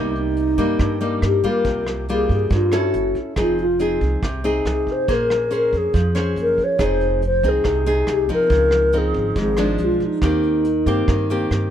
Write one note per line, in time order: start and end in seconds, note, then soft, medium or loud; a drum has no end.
0.00 0.54 C2 medium
0.00 0.78 C3 soft
0.00 0.55 G3 soft
0.00 0.55 A#3 soft
0.00 0.17 D#4 medium
0.00 0.56 D#4 soft
0.15 0.98 D#4 medium
0.15 closed hi-hat soft
0.37 closed hi-hat soft
0.58 0.78 G2 medium
0.58 0.98 G3 medium
0.58 0.98 A#3 medium
0.58 0.98 D#4 medium
0.58 kick soft
0.58 closed hi-hat soft
0.79 1.19 G2 medium
0.79 1.63 G2 medium
0.79 kick medium
0.79 cross-stick medium
0.79 closed hi-hat soft
1.01 1.40 G3 medium
1.01 1.41 A#3 medium
1.01 1.41 D#4 medium
1.01 closed hi-hat soft
1.22 1.42 G2 medium
1.22 1.49 G4 medium
1.22 cross-stick medium
1.22 closed hi-hat soft
1.44 2.05 G3 medium
1.44 2.05 A#3 medium
1.44 2.05 F4 medium
1.44 1.89 A#4 medium
1.44 kick soft
1.44 closed hi-hat soft
1.64 2.26 C2 medium
1.64 2.49 C3 soft
1.64 kick medium
1.64 closed hi-hat soft
1.87 cross-stick medium
1.87 closed hi-hat soft
2.08 2.70 G3 soft
2.08 2.70 A#3 soft
2.08 2.70 F4 medium
2.08 2.30 G#4 medium
2.08 closed hi-hat soft
2.29 2.49 G2 medium
2.29 2.51 G#4 medium
2.29 kick soft
2.29 closed hi-hat soft
2.50 2.91 G2 medium
2.50 2.92 G2 medium
2.50 2.78 F4 medium
2.50 kick medium
2.50 closed hi-hat soft
2.72 3.33 C#4 medium
2.72 3.33 E4 medium
2.72 3.34 A4 medium
2.72 cross-stick medium
2.72 closed hi-hat soft
2.76 3.17 F#4 medium
2.94 3.14 F#1 medium
2.94 closed hi-hat soft
3.15 kick soft
3.15 closed hi-hat soft
3.36 3.97 F1 medium
3.36 4.20 F3 soft
3.36 3.64 C4 soft
3.36 3.65 D#4 soft
3.36 3.58 F4 medium
3.36 3.65 G#4 medium
3.36 kick soft
3.36 cross-stick medium
3.36 closed hi-hat soft
3.58 4.00 F4 medium
3.58 closed hi-hat soft
3.79 4.22 C4 medium
3.79 4.22 D#4 soft
3.79 4.23 G#4 medium
3.79 closed hi-hat soft
4.01 4.21 C2 medium
4.01 kick soft
4.01 closed hi-hat soft
4.22 4.62 C2 medium
4.22 5.06 C3 medium
4.22 kick medium
4.22 cross-stick medium
4.22 closed hi-hat soft
4.44 5.05 C4 medium
4.44 5.05 D#4 medium
4.44 5.05 G#4 medium
4.44 closed hi-hat soft
4.65 4.85 C2 medium
4.65 cross-stick medium
4.65 closed hi-hat soft
4.70 4.93 G#4 medium
4.87 kick soft
4.87 closed hi-hat soft
4.92 5.14 C5 medium
5.08 5.69 A#1 medium
5.08 5.92 A#3 soft
5.08 5.48 C#4 soft
5.08 5.48 G#4 soft
5.08 5.48 C5 medium
5.08 kick medium
5.08 closed hi-hat soft
5.12 5.53 A#4 medium
5.30 cross-stick medium
5.30 closed hi-hat soft
5.51 5.93 C#4 soft
5.51 5.94 G#4 soft
5.51 5.94 C5 medium
5.51 closed hi-hat soft
5.56 5.79 A#4 medium
5.73 5.93 F2 medium
5.73 kick soft
5.73 closed hi-hat soft
5.77 6.18 G#4 medium
5.94 6.34 F2 medium
5.94 6.77 F3 medium
5.94 kick medium
5.94 closed hi-hat soft
6.15 6.76 C#4 medium
6.15 6.76 G#4 medium
6.15 6.76 C5 medium
6.15 cross-stick medium
6.15 closed hi-hat soft
6.36 6.56 F#1 medium
6.36 closed hi-hat soft
6.42 6.65 A#4 medium
6.58 kick soft
6.58 closed hi-hat soft
6.64 6.85 C#5 medium
6.79 7.40 F1 medium
6.79 7.63 F3 soft
6.79 7.22 C4 soft
6.79 7.22 D#4 soft
6.79 7.22 G#4 medium
6.79 kick medium
6.79 cross-stick medium
6.79 closed hi-hat soft
6.84 7.25 C5 loud
7.01 closed hi-hat soft
7.22 closed hi-hat soft
7.26 7.50 C5 loud
7.43 7.64 C2 medium
7.43 7.83 C4 medium
7.43 7.84 D#4 medium
7.43 7.84 G#4 medium
7.43 kick soft
7.43 closed hi-hat soft
7.49 7.89 G#4 medium
7.64 8.05 C2 medium
7.64 8.49 C3 medium
7.64 kick medium
7.64 cross-stick medium
7.64 closed hi-hat soft
7.86 8.26 C4 medium
7.86 8.26 D#4 medium
7.86 8.26 G#4 medium
7.86 closed hi-hat soft
8.07 8.28 C2 medium
8.07 cross-stick medium
8.07 closed hi-hat soft
8.12 8.30 G4 medium
8.29 8.90 F3 medium
8.29 8.91 C4 medium
8.29 8.91 D#4 medium
8.29 kick soft
8.29 closed hi-hat soft
8.34 8.99 A#4 loud
8.50 9.11 C#2 medium
8.50 9.34 C#3 soft
8.50 kick medium
8.50 closed hi-hat soft
8.71 cross-stick soft
8.71 closed hi-hat soft
8.93 9.55 F3 soft
8.93 9.55 C4 soft
8.93 9.55 D#4 medium
8.93 closed hi-hat soft
8.98 9.39 G#4 medium
9.14 9.35 G#1 medium
9.14 kick soft
9.14 closed hi-hat soft
9.36 9.76 G#1 medium
9.36 9.78 G#2 medium
9.36 kick medium
9.36 closed hi-hat soft
9.41 9.86 G#4 medium
9.57 10.19 F3 medium
9.57 10.19 G#3 medium
9.57 10.19 D4 medium
9.57 cross-stick medium
9.57 closed hi-hat soft
9.78 10.00 B1 medium
9.78 closed hi-hat soft
9.84 10.06 F4 medium
10.00 kick soft
10.00 closed hi-hat soft
10.05 11.53 D#4 medium
10.22 10.83 D#2 medium
10.22 11.06 D#3 soft
10.22 10.65 A#3 soft
10.22 10.66 C4 soft
10.22 10.66 G4 soft
10.22 kick medium
10.22 cross-stick medium
10.22 closed hi-hat soft
10.43 closed hi-hat soft
10.65 closed hi-hat soft
10.86 11.07 G2 medium
10.86 11.26 A#3 medium
10.86 11.27 C4 medium
10.86 11.27 G4 medium
10.86 kick soft
10.86 closed hi-hat soft
11.08 11.48 G2 medium
11.08 11.70 D#3 medium
11.08 kick medium
11.08 cross-stick medium
11.08 closed hi-hat soft
11.30 11.70 A#3 soft
11.30 11.70 C4 medium
11.30 11.70 G4 medium
11.30 closed hi-hat soft
11.51 11.70 G2 medium
11.51 cross-stick medium
11.51 closed hi-hat soft